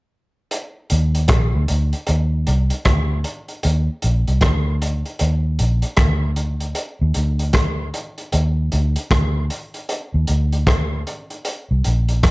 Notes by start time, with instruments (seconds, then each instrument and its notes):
0.51 closed hi-hat
0.90 fingered electric bass D#2, closed hi-hat
1.15 closed hi-hat
1.28 fingered electric bass A#1, kick, cross-stick, closed hi-hat
1.55 fingered electric bass D2
1.68 fingered electric bass D2, closed hi-hat
1.93 closed hi-hat
2.07 fingered electric bass D#2, closed hi-hat
2.47 fingered electric bass C2, closed hi-hat
2.70 closed hi-hat
2.85 fingered electric bass D2, kick, cross-stick, closed hi-hat
3.24 closed hi-hat
3.48 closed hi-hat
3.63 fingered electric bass D#2, closed hi-hat
4.02 fingered electric bass A#1, closed hi-hat
4.27 fingered electric bass C2, closed hi-hat
4.41 fingered electric bass D2, kick, cross-stick, closed hi-hat
4.82 closed hi-hat
5.05 closed hi-hat
5.19 fingered electric bass D#2, closed hi-hat
5.59 fingered electric bass A#1, closed hi-hat
5.82 closed hi-hat
5.97 fingered electric bass D2, kick, cross-stick, closed hi-hat
6.36 closed hi-hat
6.60 closed hi-hat
6.75 closed hi-hat
7.01 fingered electric bass D#2
7.14 fingered electric bass D2, closed hi-hat
7.39 closed hi-hat
7.53 kick, cross-stick, closed hi-hat
7.94 closed hi-hat
8.18 closed hi-hat
8.32 fingered electric bass D#2, closed hi-hat
8.72 fingered electric bass D2, closed hi-hat
8.96 closed hi-hat
9.11 fingered electric bass D2, kick, cross-stick, closed hi-hat
9.50 closed hi-hat
9.74 closed hi-hat
9.89 closed hi-hat
10.14 fingered electric bass D#2
10.27 fingered electric bass D2, closed hi-hat
10.52 closed hi-hat
10.67 kick, cross-stick, closed hi-hat
11.07 closed hi-hat
11.30 closed hi-hat
11.45 closed hi-hat
11.71 fingered electric bass C2
11.84 fingered electric bass A#1, closed hi-hat
12.08 closed hi-hat
12.23 fingered electric bass F2, kick, cross-stick, closed hi-hat